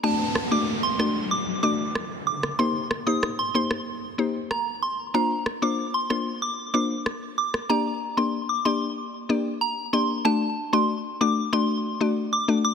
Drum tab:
SD |--r---r-----r--r|--r-r--r----r---|--r---r-----r--r|----------------|

SD |----------------|